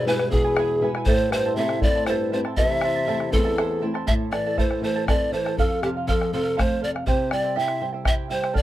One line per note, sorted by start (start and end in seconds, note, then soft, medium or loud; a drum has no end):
0.00 1.03 B2 medium
0.05 0.32 G2 medium
0.05 0.31 G#3 medium
0.05 0.32 B3 soft
0.05 0.32 E4 medium
0.05 0.32 G#4 medium
0.05 0.33 B4 medium
0.05 0.32 B4 medium
0.05 0.32 E5 medium
0.05 0.33 G#5 medium
0.05 bombo rim soft
0.19 bombo rim medium
0.31 0.88 E2 medium
0.31 0.80 G#3 medium
0.31 0.80 B3 medium
0.31 0.45 E4 medium
0.31 0.81 E4 medium
0.31 0.88 G#4 medium
0.31 0.45 B4 medium
0.31 0.45 E5 medium
0.31 0.43 G#5 medium
0.31 bombo low medium
0.45 0.58 E4 soft
0.45 0.58 B4 medium
0.45 0.57 G#5 medium
0.57 0.82 E4 medium
0.57 0.83 G#4 medium
0.57 0.83 B4 medium
0.57 0.81 E5 medium
0.57 0.83 G#5 medium
0.57 bombo rim medium
0.81 1.06 G#3 medium
0.81 1.06 B3 soft
0.81 1.06 E4 medium
0.81 0.95 E4 medium
0.81 0.95 B4 medium
0.81 0.95 E5 medium
0.81 0.95 G#5 medium
0.95 1.07 E4 soft
0.95 1.08 B4 medium
0.95 1.08 G#5 medium
0.95 bombo rim medium
1.06 1.29 A2 medium
1.06 2.53 A2 medium
1.06 1.32 E4 medium
1.06 1.33 A4 medium
1.06 1.30 C5 loud
1.06 1.33 C5 medium
1.06 1.32 E5 medium
1.06 1.33 A5 medium
1.06 bombo low medium
1.30 1.57 G2 medium
1.30 1.45 E4 medium
1.30 1.57 C5 medium
1.30 1.46 C5 medium
1.30 1.45 E5 medium
1.30 bombo rim medium
1.35 1.45 A5 medium
1.46 1.58 E4 soft
1.46 1.58 C5 medium
1.46 1.58 A5 medium
1.56 1.80 C3 medium
1.56 1.80 A3 soft
1.56 1.81 C4 soft
1.56 1.81 E4 medium
1.56 1.83 E4 medium
1.56 1.83 A4 medium
1.56 1.82 E5 medium
1.56 bombo rim soft
1.60 1.84 C5 medium
1.60 1.84 A5 medium
1.69 bombo rim medium
1.80 2.09 A2 medium
1.80 2.31 A3 medium
1.80 2.31 C4 soft
1.80 2.31 E4 medium
1.80 1.96 E4 medium
1.80 2.08 D5 medium
1.80 1.95 E5 medium
1.80 bombo low medium
1.85 1.95 C5 medium
1.85 1.94 A5 medium
1.95 2.08 E4 soft
1.95 2.08 C5 medium
1.95 2.08 A5 medium
2.06 2.32 G2 medium
2.06 2.32 E4 medium
2.06 2.33 A4 medium
2.06 2.32 C5 medium
2.06 2.31 E5 medium
2.06 2.33 A5 medium
2.06 bombo rim medium
2.32 2.44 G2 medium
2.32 2.81 A3 soft
2.32 2.81 C4 soft
2.32 2.45 E4 medium
2.32 2.81 E4 medium
2.32 2.45 C5 medium
2.32 2.39 C5 medium
2.32 2.45 E5 medium
2.32 2.44 A5 medium
2.45 2.56 E4 soft
2.45 2.57 C5 soft
2.45 2.57 A5 medium
2.45 bombo rim medium
2.57 4.04 E2 medium
2.57 3.35 C3 medium
2.57 2.82 E4 medium
2.57 2.83 A4 medium
2.57 2.83 C5 medium
2.57 2.82 E5 medium
2.57 3.34 E5 loud
2.57 2.83 A5 medium
2.57 bombo low medium
2.70 bombo rim soft
2.81 2.95 E4 medium
2.81 2.95 C5 medium
2.81 2.96 E5 medium
2.81 2.94 A5 medium
2.81 bombo rim medium
2.96 3.07 E4 soft
2.96 3.07 C5 soft
2.96 3.07 A5 medium
3.07 3.31 A3 soft
3.07 3.31 C4 soft
3.07 3.31 E4 medium
3.07 3.33 E4 medium
3.07 3.32 A4 medium
3.07 3.33 C5 medium
3.07 3.32 E5 medium
3.07 3.33 A5 loud
3.07 bombo rim soft
3.20 bombo rim medium
3.32 3.89 E2 medium
3.32 3.80 A3 soft
3.32 3.81 C4 soft
3.32 3.81 E4 medium
3.32 3.45 E4 medium
3.32 3.84 A4 medium
3.32 3.45 C5 medium
3.32 3.45 E5 medium
3.32 3.44 A5 medium
3.32 bombo low medium
3.45 3.58 E4 soft
3.45 3.57 C5 soft
3.45 3.58 A5 medium
3.58 3.81 E4 medium
3.58 3.82 A4 medium
3.58 3.81 C5 medium
3.58 3.81 E5 medium
3.58 3.82 A5 medium
3.58 bombo rim medium
3.71 bombo rim soft
3.82 4.06 A3 soft
3.82 4.07 C4 soft
3.82 3.94 E4 medium
3.82 4.07 E4 medium
3.82 3.94 C5 medium
3.82 3.94 E5 medium
3.82 3.93 A5 medium
3.94 4.07 E4 soft
3.94 4.05 C5 medium
3.94 4.07 A5 medium
3.94 bombo rim medium
4.07 5.53 A2 medium
4.07 4.31 E4 medium
4.07 4.32 A4 medium
4.07 4.32 C5 medium
4.07 4.31 E5 medium
4.07 4.14 E5 medium
4.07 4.32 A5 medium
4.07 bombo low medium
4.32 4.57 E3 medium
4.32 4.45 E4 medium
4.32 4.45 A4 medium
4.32 4.61 D5 medium
4.32 4.45 E5 medium
4.32 4.45 A5 medium
4.32 bombo rim medium
4.46 4.57 E4 soft
4.46 4.57 A4 soft
4.46 4.58 A5 medium
4.56 4.81 A3 medium
4.56 4.82 E4 medium
4.56 4.83 A4 medium
4.56 4.83 C5 medium
4.56 4.82 E5 medium
4.56 4.83 A5 medium
4.56 bombo rim soft
4.56 bombo low medium
4.71 bombo rim medium
4.82 5.06 E3 medium
4.82 4.96 E4 medium
4.82 4.95 A4 medium
4.82 5.06 C5 medium
4.82 4.95 E5 soft
4.82 4.95 A5 medium
4.96 5.08 E4 soft
4.96 5.08 A4 soft
4.96 5.08 A5 medium
5.06 5.31 C4 medium
5.06 5.32 E4 medium
5.06 5.33 A4 medium
5.06 5.33 C5 medium
5.06 5.31 D5 medium
5.06 5.32 E5 medium
5.06 5.33 A5 medium
5.06 bombo rim medium
5.06 bombo low medium
5.32 5.56 E3 medium
5.32 5.45 E4 medium
5.32 5.45 A4 medium
5.32 5.60 C5 medium
5.32 5.45 E5 medium
5.32 5.44 A5 medium
5.45 5.58 E4 soft
5.45 5.57 A4 soft
5.45 5.58 A5 medium
5.45 bombo rim medium
5.57 7.03 F2 medium
5.57 5.82 A4 medium
5.57 5.83 A4 medium
5.57 5.83 C5 medium
5.57 5.83 F5 medium
5.57 bombo low medium
5.82 6.07 C3 medium
5.82 5.89 G4 medium
5.82 5.96 A4 medium
5.82 5.96 C5 medium
5.82 5.95 F5 medium
5.82 bombo rim medium
5.97 6.07 C5 soft
5.97 6.08 F5 medium
6.07 6.32 F3 medium
6.07 6.32 A4 medium
6.07 6.31 A4 medium
6.07 6.33 C5 medium
6.07 6.33 F5 medium
6.07 bombo rim soft
6.07 bombo low medium
6.21 bombo rim medium
6.33 6.57 C3 medium
6.33 6.45 A4 medium
6.33 6.56 A4 medium
6.33 6.43 C5 medium
6.33 6.43 F5 medium
6.44 6.56 C5 soft
6.44 6.56 F5 medium
6.56 6.82 A3 medium
6.56 6.79 A4 medium
6.56 6.80 C5 medium
6.56 6.81 C5 medium
6.56 6.81 F5 medium
6.56 bombo rim medium
6.56 bombo low medium
6.81 7.06 C3 medium
6.81 6.94 A4 medium
6.81 6.94 C5 medium
6.81 6.90 D5 medium
6.81 6.93 F5 medium
6.95 7.06 C5 soft
6.95 7.06 F5 medium
6.95 bombo rim medium
7.06 8.52 C3 medium
7.06 7.30 E4 medium
7.06 7.32 G4 medium
7.06 7.34 C5 loud
7.06 7.31 C5 medium
7.06 7.30 E5 medium
7.06 7.32 G5 medium
7.06 bombo low medium
7.31 7.56 G3 medium
7.31 7.44 E4 medium
7.31 7.43 C5 medium
7.31 7.60 D5 medium
7.31 7.44 E5 medium
7.31 7.42 G5 medium
7.31 bombo rim medium
7.43 7.55 E4 soft
7.43 7.56 C5 soft
7.43 7.56 G5 medium
7.56 7.80 E4 medium
7.56 7.81 E4 medium
7.56 7.81 G4 medium
7.56 7.80 C5 medium
7.56 7.79 E5 medium
7.56 7.86 E5 medium
7.56 7.81 G5 medium
7.56 bombo rim soft
7.68 bombo rim medium
7.81 8.05 G3 medium
7.81 7.94 E4 medium
7.81 7.93 C5 medium
7.81 7.93 E5 medium
7.81 7.91 G5 medium
7.93 8.04 E4 soft
7.93 8.04 C5 medium
7.93 8.05 G5 medium
8.05 8.28 E4 medium
8.05 8.30 G4 medium
8.05 8.29 C5 medium
8.05 8.28 E5 medium
8.05 8.14 E5 medium
8.05 8.29 G5 medium
8.05 bombo rim medium
8.05 bombo low medium
8.29 8.55 G3 soft
8.29 8.42 E4 medium
8.29 8.42 C5 medium
8.29 8.58 C5 medium
8.29 8.43 E5 medium
8.29 8.41 G5 medium
8.42 8.53 E4 soft
8.42 8.53 C5 soft
8.42 8.55 G5 soft
8.42 bombo rim medium
8.53 8.62 D3 medium
8.53 8.62 A4 medium
8.53 8.62 D5 medium
8.53 8.62 D5 loud
8.53 8.62 F5 medium
8.53 bombo rim soft
8.53 bombo low medium